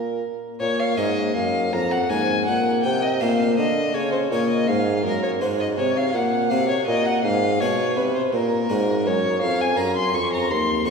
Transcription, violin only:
Already playing: A#4
0.60 C#5
0.80 F5
0.97 D#5
1.36 F5
1.73 A#5
1.92 F#5
2.10 G#5
2.46 F#5
2.83 G5
3.03 D#5
3.20 F5
3.58 D#5
3.95 C#5
4.12 C5
4.31 C#5
4.50 D#5
4.68 F5
5.05 A#4
5.23 C#5
5.41 C5
5.60 D#5
5.78 C#5
5.97 F5
6.16 F#5
6.50 F5
6.69 C#5
6.87 D#5
7.06 F#5
7.24 F5
7.61 C#5
7.97 B4
8.15 C5
8.34 A#4
9.07 C#5
9.42 F5
9.61 G#5
9.77 A#5
9.96 C6
10.15 C#6
10.33 A#5
10.51 C6
10.87 C#6

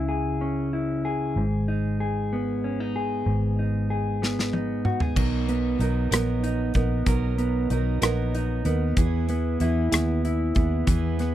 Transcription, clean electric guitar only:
Already playing: C#3 C#4 E4
0.09 G#4
0.41 C#4
0.73 E4
1.05 G#4
1.37 G#2
1.68 D#4
2.00 G#4
2.33 B3
2.64 C#4
2.80 D#4
2.96 G#4
3.26 G#2
3.59 D#4
3.90 G#4
4.22 B3
4.53 D#4
4.85 F#4
5.01 G#4
5.49 B3
5.81 D#4
6.12 B3
6.43 D#4
6.75 B3
7.38 B3
7.71 D#4
8.02 B3
8.35 D#4
8.66 B3
9.30 B3
9.61 E4
9.92 B3
10.25 E4
10.56 B3
11.20 B3

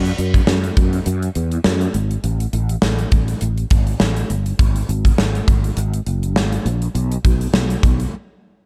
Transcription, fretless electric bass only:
Already playing: F#2
0.18 F#2
0.47 F#2
0.77 F#2
1.06 F#2
1.36 E2
1.65 F#2
1.94 G#1
2.24 A1
2.53 A1
2.82 A1
3.12 A1
3.41 A1
3.71 G#1
4.01 A1
4.30 G1
4.59 G#1
4.89 G#1
5.18 G#1
5.48 G#1
5.77 G#1
6.06 F#1
6.36 G#1
6.65 A#1
6.95 B1
7.24 B1
7.53 B1
7.83 B1

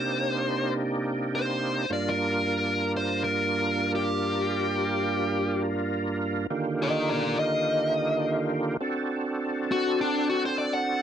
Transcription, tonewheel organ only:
Already playing: C3 A#3 D4 D#4 G4
1.90 G2 A#3 D4 F4 A#4
6.50 D3 D#3 A#3 F4 G4
8.81 C4 D4 F#4 A4

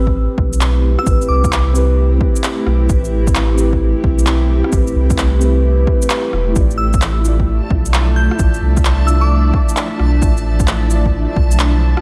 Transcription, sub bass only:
Already playing: A1
0.38 B1
1.07 A1
1.29 C2
2.67 B1
2.90 A1
4.04 B1
4.73 A1
4.96 C2
6.33 E1
6.56 A1
7.71 B1
8.40 A1
8.62 C2
10.00 B1
10.22 A1
11.36 B1

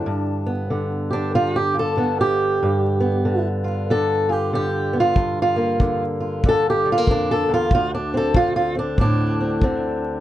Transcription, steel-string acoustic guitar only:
Already playing: D3 D4
0.06 G2
0.46 B3
0.70 D3
1.10 D4 G4
1.35 D3 F4
1.56 G4
1.74 F4
1.79 A4
1.97 D3 B3
2.21 G4
2.63 G2
3.00 B3
3.25 D3
3.64 F4
3.90 D3 A4
4.29 F4 G4
4.53 D3 G4
4.93 B3
5.00 F4
5.16 G2
5.42 F4
5.56 A#3
5.80 D3
6.20 F4
6.45 D3 A4
6.70 G4
6.85 G3
6.92 F4
6.98 A#3
7.10 F2 D4
7.31 A4
7.49 E2
7.54 F4
7.74 D2 F4
7.95 D4
8.14 C4 A4
8.35 D3 F4
8.56 F4
8.75 C4 D4
9.00 A2 D4
9.40 C4
9.63 D3 C4

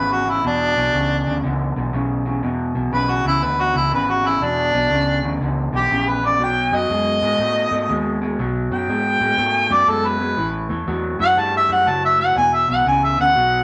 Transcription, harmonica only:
Already playing: B4
0.13 F#4
0.30 E4
0.47 D4
2.94 B4
3.11 F#4
3.27 E4
3.43 B4
3.61 F#4
3.77 E4
3.94 B4
4.11 F#4
4.27 E4
4.43 D4
5.76 G4
6.09 B4
6.26 D5
6.43 G5
6.75 D#5
8.74 G5
9.73 D5
9.90 A4
10.06 B4
11.22 F#5
11.40 A5
11.57 E5
11.72 F#5
11.89 A5
12.05 E5
12.20 F#5
12.37 G#5
12.53 E5
12.70 F#5
12.88 G#5
13.04 E5
13.20 F#5

